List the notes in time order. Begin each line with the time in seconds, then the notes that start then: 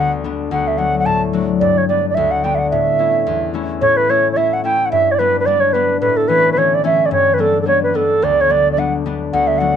Already playing: D2 G3 A3 B3 D4 F#5
0.24 G3 B3 D4
0.51 D2 F#5
0.68 E5
0.78 F#3 A3 D4 F#5
0.99 F#5
1.06 A2 A5
1.33 F#3 A3 D4
1.60 G2 D5
1.78 C#5
1.88 G3 B3 D4 D5
2.10 D5
2.15 D2 E5
2.31 F#5
2.44 G3 B3 D4 G5
2.55 E5 F#5
2.70 A2 E5
2.99 A3 C#4 E4
3.27 E2
3.54 A3 C#4 E4
3.81 A2 C#5
3.97 B4
4.09 A3 C#4 E4 C#5
4.32 A3 C#5
4.36 C#4 E4 E5
4.53 F#5
4.64 A3 C#4 E4 G5
4.86 F#5
4.91 G2 E5
5.11 C#5 D5
5.19 G3 B3 D4 B4
5.40 B4
5.46 G3 B3 D4 D5
5.60 C#5
5.73 G3 B3 D4 B4
6.01 A2 B4
6.17 A4
6.28 E3 A3 C#4 B4
6.52 B4
6.56 E3 A3 C#4 C#5
6.74 D5
6.84 E3 A3 C#4 E5
7.06 D5
7.11 G2 C#5
7.34 B4
7.38 G3 B3 D4 A4
7.62 G3 A4
7.66 B3 D4 C#5
7.83 B4
7.94 G3 B3 D4 A4
8.22 D2 D5
8.41 C#5
8.49 G3 B3 D4 D5
8.72 D5
8.77 G3 B3 D4 F#5
9.06 G3 B3 D4
9.33 D2 F#5
9.47 E5
9.58 F#3 A3 D4 F#5